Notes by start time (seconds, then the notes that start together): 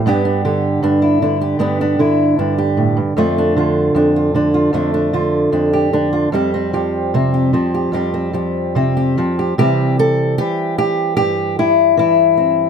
0.06 G2 B3 D4 G4
0.25 D4
0.45 D3 G4
0.83 G2 D4
1.02 E4
1.22 D3 D4
1.41 G4
1.59 G2 B3 D4 G4
1.81 D4
1.99 D3 E4
2.38 G2 D4
2.58 G4
2.77 A2
2.97 G2
3.17 F2 A3 D4 F4
3.38 D4
3.56 D3 F4
3.95 F2 D4
4.16 F4
4.34 D3 D4
4.54 F4
4.73 F2 A3 D4 F4
4.94 D4
5.13 D3 F4
5.52 F2 D4
5.73 G4
5.93 D3 D4
6.13 F4
6.32 F2 G3 C4 G4
6.54 C4
6.73 F3 G4
7.14 C3 C4
7.34 G4
7.53 F3 C4
7.74 G4
7.92 F2 G3 C4 G4
8.14 C4
8.33 F3 G4
8.75 C3 C4
8.97 G4
9.18 F3 C4
9.39 G4
9.58 C3 E3 G3 C4 G4
9.99 A4
10.38 E3 G4
10.78 G4
11.17 G2 G4
11.59 E4
11.97 E3 E4
12.37 C4